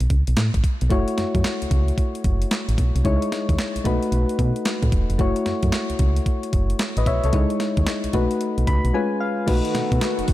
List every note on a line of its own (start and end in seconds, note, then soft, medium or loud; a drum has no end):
0.00 0.08 B1 medium
0.00 closed hi-hat soft
0.10 0.24 C#2 medium
0.10 kick medium
0.10 closed hi-hat medium
0.27 0.35 B1 medium
0.27 closed hi-hat medium
0.37 0.50 A2 medium
0.37 snare loud
0.37 clap medium
0.37 closed hi-hat medium
0.54 0.62 A1 loud
0.54 kick medium
0.54 closed hi-hat medium
0.64 kick medium
0.64 closed hi-hat medium
0.81 0.89 B1 loud
0.81 closed hi-hat soft
0.90 1.04 F#1 loud
0.90 3.00 A3 medium
0.90 3.01 E4 medium
0.90 3.01 F#4 medium
0.90 3.01 C#5 medium
0.90 kick loud
0.90 closed hi-hat medium
1.08 closed hi-hat medium
1.18 1.25 F#2 soft
1.18 snare medium
1.18 closed hi-hat medium
1.35 1.42 F#2 loud
1.35 kick medium
1.35 closed hi-hat medium
1.44 snare loud
1.44 clap medium
1.44 closed hi-hat medium
1.62 1.66 C#2 medium
1.62 closed hi-hat medium
1.71 1.92 C#2 medium
1.71 kick medium
1.71 closed hi-hat medium
1.88 closed hi-hat soft
1.98 kick medium
1.98 closed hi-hat medium
2.15 closed hi-hat soft
2.24 2.45 F#1 medium
2.24 kick medium
2.24 closed hi-hat medium
2.42 closed hi-hat soft
2.51 snare loud
2.51 clap medium
2.51 closed hi-hat medium
2.69 2.76 A1 medium
2.69 closed hi-hat medium
2.78 2.91 B1 medium
2.78 kick medium
2.78 closed hi-hat medium
2.95 3.03 C2 medium
2.95 closed hi-hat soft
3.04 3.18 C#2 loud
3.04 3.85 G#3 medium
3.04 3.84 D#4 medium
3.04 3.85 E4 medium
3.04 3.86 C#5 medium
3.04 kick loud
3.04 closed hi-hat medium
3.22 closed hi-hat medium
3.32 snare medium
3.32 closed hi-hat medium
3.49 3.56 D#2 medium
3.49 kick medium
3.49 closed hi-hat medium
3.59 snare loud
3.59 clap medium
3.59 closed hi-hat medium
3.76 3.80 B1 soft
3.76 closed hi-hat medium
3.84 3.99 B1 loud
3.84 5.16 A3 medium
3.84 5.16 D#4 medium
3.84 5.17 F#4 medium
3.84 5.17 B4 medium
3.84 kick loud
3.84 closed hi-hat medium
4.03 closed hi-hat soft
4.12 4.25 B1 loud
4.12 closed hi-hat medium
4.29 closed hi-hat medium
4.39 4.52 B2 loud
4.39 kick medium
4.39 closed hi-hat medium
4.56 closed hi-hat medium
4.65 snare loud
4.65 clap medium
4.65 closed hi-hat medium
4.83 4.90 A2 medium
4.83 kick medium
4.83 closed hi-hat medium
4.92 5.06 E1 medium
4.92 kick loud
4.92 closed hi-hat medium
5.10 5.17 F1 medium
5.10 closed hi-hat soft
5.18 5.32 F#1 loud
5.18 7.29 A3 medium
5.18 7.29 E4 medium
5.18 7.30 F#4 medium
5.18 6.51 C#5 medium
5.18 kick loud
5.18 closed hi-hat medium
5.36 closed hi-hat medium
5.46 5.53 F#2 soft
5.46 snare medium
5.46 closed hi-hat medium
5.63 5.70 F#2 loud
5.63 kick medium
5.63 closed hi-hat medium
5.72 snare loud
5.72 clap medium
5.72 closed hi-hat medium
5.90 5.94 C#2 soft
5.90 closed hi-hat medium
5.99 6.20 C#2 medium
5.99 kick medium
5.99 closed hi-hat medium
6.16 closed hi-hat medium
6.26 kick medium
6.26 closed hi-hat medium
6.43 closed hi-hat soft
6.53 6.74 F#1 medium
6.53 kick medium
6.53 closed hi-hat medium
6.70 closed hi-hat medium
6.79 snare loud
6.79 clap medium
6.79 closed hi-hat medium
6.97 7.04 A1 loud
6.97 7.07 B4 soft
6.97 7.06 D#5 medium
6.97 closed hi-hat medium
7.06 7.20 B1 medium
7.06 7.24 C#5 medium
7.06 7.23 E5 medium
7.06 kick medium
7.06 closed hi-hat medium
7.24 7.31 C2 medium
7.24 7.50 A4 medium
7.24 7.33 C#5 medium
7.24 closed hi-hat soft
7.33 7.47 C#2 loud
7.33 8.13 G#3 medium
7.33 8.12 D#4 medium
7.33 8.14 E4 medium
7.33 8.14 C#5 medium
7.33 kick loud
7.33 closed hi-hat medium
7.50 closed hi-hat medium
7.60 snare medium
7.60 closed hi-hat medium
7.77 7.85 D#2 loud
7.77 kick medium
7.77 closed hi-hat medium
7.87 snare loud
7.87 clap medium
7.87 closed hi-hat medium
8.04 8.08 B1 soft
8.04 closed hi-hat medium
8.13 8.27 B1 loud
8.13 8.94 A3 medium
8.13 8.94 D#4 medium
8.13 8.94 F#4 medium
8.13 8.94 B4 medium
8.13 kick medium
8.13 closed hi-hat medium
8.31 closed hi-hat soft
8.41 closed hi-hat medium
8.58 8.65 B1 medium
8.58 closed hi-hat medium
8.67 8.81 C#2 medium
8.67 8.92 B5 medium
8.67 kick medium
8.67 closed hi-hat medium
8.85 8.92 B1 loud
8.85 closed hi-hat medium
8.94 9.47 G#3 medium
8.94 9.48 C#4 medium
8.94 9.48 F4 medium
8.94 9.48 B4 medium
8.94 9.19 G#5 medium
9.20 9.46 F5 medium
9.46 9.61 B1 medium
9.46 10.33 D#3 medium
9.46 10.33 A3 medium
9.46 10.33 B3 medium
9.46 10.33 D#4 medium
9.46 10.33 F#4 medium
9.46 10.33 B4 medium
9.46 kick loud
9.46 closed hi-hat medium
9.46 crash medium
9.65 closed hi-hat medium
9.75 9.82 B2 soft
9.75 snare medium
9.75 closed hi-hat medium
9.92 9.99 B2 loud
9.92 kick medium
9.92 closed hi-hat medium
10.01 snare loud
10.01 clap medium
10.01 closed hi-hat medium
10.19 10.22 F#1 medium
10.19 closed hi-hat medium
10.28 10.33 F#1 loud
10.28 kick loud
10.28 open hi-hat medium